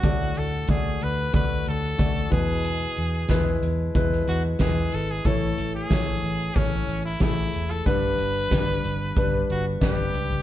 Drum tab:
HH |x-x-x-x-x-x-x-x-|x-x-x-x-x-x-x-x-|x-x-x-x-x-x-x-xx|x-x-x-x-x-x-x-x-|
SD |----------------|----o----o--o---|----o-------o---|----o-------o---|
FT |----------------|----------------|----------------|---------------o|
BD |o---o---o---o-o-|----o---o---o---|o---o---o---o---|o---o---o---o---|